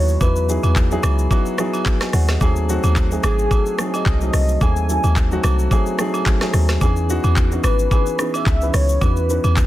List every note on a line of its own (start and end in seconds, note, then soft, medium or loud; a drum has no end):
0.00 0.17 D#2 loud
0.00 0.21 F#3 medium
0.00 0.21 B3 medium
0.00 0.22 D#4 medium
0.00 0.22 E4 medium
0.00 1.32 F#4 loud
0.00 0.50 G#4 loud
0.00 0.22 B4 medium
0.00 0.24 C#5 loud
0.08 shaker medium
0.21 0.58 E2 loud
0.21 0.43 F#3 medium
0.21 0.44 B3 medium
0.21 0.44 D#4 medium
0.21 0.44 E4 medium
0.21 0.44 B4 medium
0.21 0.77 B4 medium
0.21 kick loud
0.21 high agogo medium
0.21 shaker medium
0.36 shaker medium
0.48 0.82 F#3 medium
0.48 0.82 B3 medium
0.48 0.82 D#4 medium
0.48 0.82 E4 medium
0.48 0.83 G#4 medium
0.48 shaker loud
0.63 0.99 E2 medium
0.63 high agogo medium
0.63 shaker medium
0.76 kick loud
0.76 clap medium
0.76 shaker medium
0.91 1.24 F#3 medium
0.91 1.24 B3 medium
0.91 1.24 D#4 medium
0.91 1.24 E4 medium
0.91 1.24 G#4 loud
0.91 shaker soft
1.03 1.28 C#2 loud
1.03 cross-stick loud
1.03 high agogo medium
1.03 shaker loud
1.19 shaker medium
1.31 1.54 F#3 medium
1.31 1.54 B3 medium
1.31 1.54 D#4 medium
1.31 1.54 E4 medium
1.31 1.54 F#4 loud
1.31 kick loud
1.31 high agogo medium
1.31 shaker medium
1.46 shaker medium
1.58 1.92 F#3 medium
1.58 1.92 B3 medium
1.58 1.92 D#4 medium
1.58 1.93 E4 medium
1.58 1.87 G#4 loud
1.58 cross-stick loud
1.58 shaker loud
1.73 high agogo medium
1.73 shaker medium
1.86 kick medium
1.86 clap loud
1.86 shaker medium
2.01 2.14 D#5 medium
2.01 2.13 G#5 medium
2.01 cross-stick loud
2.01 snare medium
2.01 shaker soft
2.13 2.38 D#2 loud
2.13 2.29 C#5 medium
2.13 2.28 F#5 medium
2.13 cross-stick medium
2.13 open hi-hat medium
2.13 shaker medium
2.28 2.41 G#4 medium
2.28 2.55 D#5 medium
2.28 cross-stick medium
2.28 snare medium
2.28 shaker medium
2.41 2.78 D#2 loud
2.41 2.64 F#3 medium
2.41 2.64 A3 medium
2.41 2.64 C4 medium
2.41 2.64 D#4 medium
2.41 2.64 G#4 loud
2.41 kick loud
2.41 high agogo medium
2.41 shaker medium
2.56 shaker medium
2.69 3.02 F#3 medium
2.69 3.02 A3 medium
2.69 3.02 C4 medium
2.69 3.03 D#4 medium
2.69 3.03 F#4 loud
2.69 shaker loud
2.83 3.19 D#2 loud
2.83 high agogo medium
2.83 shaker medium
2.96 kick loud
2.96 clap medium
2.96 shaker medium
3.11 3.44 F#3 medium
3.11 3.44 A3 medium
3.11 3.44 C4 medium
3.11 3.44 D#4 medium
3.11 3.44 G#4 medium
3.11 shaker soft
3.23 3.48 G#1 medium
3.23 3.97 G#4 loud
3.23 cross-stick loud
3.23 high agogo medium
3.23 shaker medium
3.39 shaker medium
3.51 3.74 F#3 medium
3.51 3.74 A3 medium
3.51 3.74 C4 medium
3.51 3.74 D#4 medium
3.51 3.74 A4 medium
3.51 kick loud
3.51 high agogo medium
3.51 shaker medium
3.66 shaker medium
3.79 4.12 F#3 medium
3.79 4.12 A3 medium
3.79 4.13 C4 medium
3.79 4.13 D#4 medium
3.79 4.13 G#4 medium
3.79 cross-stick loud
3.79 shaker loud
3.94 4.07 D#5 loud
3.94 high agogo medium
3.94 shaker medium
4.06 4.30 C2 loud
4.06 4.64 D#5 loud
4.06 kick medium
4.06 clap medium
4.06 shaker medium
4.21 4.54 F#3 medium
4.21 4.54 A3 medium
4.21 4.54 C4 medium
4.21 4.54 D#4 medium
4.21 4.55 A4 medium
4.21 shaker soft
4.33 4.58 C2 loud
4.33 cross-stick medium
4.33 open hi-hat medium
4.33 shaker medium
4.49 shaker medium
4.61 4.99 D#2 loud
4.61 4.84 F#3 medium
4.61 4.84 A3 medium
4.61 4.84 C4 medium
4.61 4.84 D#4 medium
4.61 4.85 G#4 medium
4.61 5.44 G#5 loud
4.61 kick loud
4.61 high agogo medium
4.61 shaker medium
4.76 shaker medium
4.89 5.22 F#3 medium
4.89 5.23 A3 medium
4.89 5.23 C4 medium
4.89 5.23 D#4 medium
4.89 5.23 A4 medium
4.89 shaker loud
5.04 5.39 D#2 medium
5.04 high agogo medium
5.04 shaker medium
5.16 kick loud
5.16 clap medium
5.16 shaker medium
5.31 5.64 F#3 medium
5.31 5.64 A3 medium
5.31 5.64 C4 medium
5.31 5.64 D#4 medium
5.31 5.65 F#4 loud
5.31 shaker soft
5.44 5.68 C2 loud
5.44 cross-stick medium
5.44 high agogo medium
5.44 shaker loud
5.59 shaker medium
5.71 5.94 F#3 medium
5.71 5.94 A3 medium
5.71 5.94 C4 medium
5.71 5.94 D#4 medium
5.71 5.95 G#4 loud
5.71 kick loud
5.71 high agogo medium
5.71 shaker medium
5.86 shaker medium
5.99 6.32 F#3 medium
5.99 6.33 A3 medium
5.99 6.33 C4 medium
5.99 6.33 D#4 medium
5.99 6.33 G#4 loud
5.99 cross-stick loud
5.99 shaker loud
6.14 high agogo medium
6.14 shaker medium
6.26 kick medium
6.26 clap medium
6.26 shaker medium
6.41 6.74 F#3 medium
6.41 6.74 A3 medium
6.41 6.74 C4 medium
6.41 6.74 D#4 medium
6.41 6.75 G#4 loud
6.41 cross-stick loud
6.41 snare medium
6.41 shaker soft
6.54 6.78 D#2 loud
6.54 cross-stick medium
6.54 open hi-hat medium
6.54 shaker medium
6.69 cross-stick medium
6.69 snare medium
6.69 shaker medium
6.81 7.19 E2 loud
6.81 7.04 E3 medium
6.81 7.04 B3 medium
6.81 7.04 C#4 medium
6.81 7.04 D#4 medium
6.81 7.05 G#4 loud
6.81 kick loud
6.81 high agogo medium
6.81 shaker medium
6.96 shaker medium
7.09 7.43 E3 medium
7.09 7.43 B3 medium
7.09 7.43 C#4 medium
7.09 7.43 D#4 medium
7.09 7.43 F#4 loud
7.09 shaker loud
7.24 7.59 E2 loud
7.24 high agogo medium
7.24 shaker soft
7.36 kick loud
7.36 clap medium
7.36 shaker medium
7.52 7.84 E3 medium
7.52 7.84 B3 medium
7.52 7.84 C#4 medium
7.52 7.85 D#4 medium
7.52 7.85 F#4 medium
7.52 shaker soft
7.64 7.88 G#1 loud
7.64 8.37 B4 loud
7.64 cross-stick medium
7.64 high agogo medium
7.64 shaker medium
7.79 shaker medium
7.91 8.14 E3 medium
7.91 8.14 B3 medium
7.91 8.14 C#4 medium
7.91 8.15 D#4 medium
7.91 8.15 G#4 medium
7.91 kick loud
7.91 high agogo medium
7.91 shaker medium
8.06 shaker medium
8.19 8.53 E3 medium
8.19 8.53 B3 medium
8.19 8.53 C#4 medium
8.19 8.53 D#4 medium
8.19 8.53 G#4 medium
8.19 cross-stick loud
8.19 shaker loud
8.34 8.77 E5 loud
8.34 high agogo medium
8.34 shaker medium
8.46 8.71 C#2 loud
8.46 kick loud
8.46 clap medium
8.46 shaker medium
8.61 8.94 E3 medium
8.61 8.94 B3 medium
8.61 8.94 C#4 medium
8.61 8.95 D#4 medium
8.61 8.95 B4 medium
8.61 shaker soft
8.74 8.98 C#2 loud
8.74 9.04 C#5 loud
8.74 cross-stick medium
8.74 open hi-hat medium
8.74 shaker medium
8.89 shaker medium
9.01 9.39 E2 loud
9.01 9.24 E3 medium
9.01 9.24 B3 medium
9.01 9.24 C#4 medium
9.01 9.25 D#4 medium
9.01 9.25 F#4 medium
9.01 9.57 B4 medium
9.01 kick loud
9.01 high agogo medium
9.01 shaker medium
9.16 shaker medium
9.29 9.63 E3 medium
9.29 9.63 B3 medium
9.29 9.63 C#4 medium
9.29 9.63 D#4 medium
9.29 9.63 B4 medium
9.29 shaker loud
9.44 9.67 E2 loud
9.44 high agogo medium
9.44 shaker medium
9.57 kick loud
9.57 clap medium
9.57 shaker medium